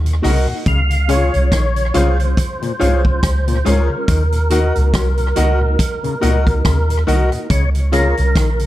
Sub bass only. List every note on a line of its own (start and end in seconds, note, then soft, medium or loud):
0.00 0.21 D#2 medium
0.25 0.47 C2 medium
0.67 1.30 C#2 loud
1.35 1.51 C2 loud
1.52 1.92 A#1 medium
1.96 2.35 C2 loud
2.82 3.20 C2 medium
3.24 3.63 C#2 loud
3.67 3.89 C#2 medium
4.09 4.72 D#2 loud
4.77 4.93 C#2 loud
4.94 5.33 C2 medium
5.38 5.77 C#2 medium
6.23 6.62 C#2 medium
6.66 7.05 D#2 loud
7.08 7.31 C2 medium
7.51 8.14 C#2 loud
8.19 8.35 C2 medium
8.36 8.66 A#1 medium